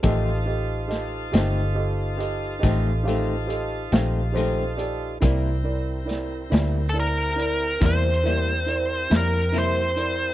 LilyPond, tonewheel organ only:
\new Staff \with { instrumentName = "Tonewheel organ" } { \time 12/8 \key c \dorian \tempo 4. = 46 <ees' f' a' c''>1. | <c' e' g' bes'>1. | }